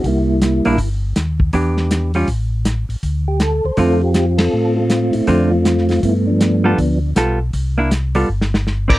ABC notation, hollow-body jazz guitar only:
X:1
M:4/4
L:1/8
Q:"Swing" 1/4=160
K:C
V:1 name="Hollow-body jazz guitar"
z3 [_B,DE] z4 | [E,B,DG]3 [G,_DF] z4 | z4 [D,A,CF] z3 | z4 [D,A,CF] z3 |
z3 [G,B,FA] z2 [G,B,FA] z | z [_B,DE] z [G,=B,FA] z3 [CE_Bd] |]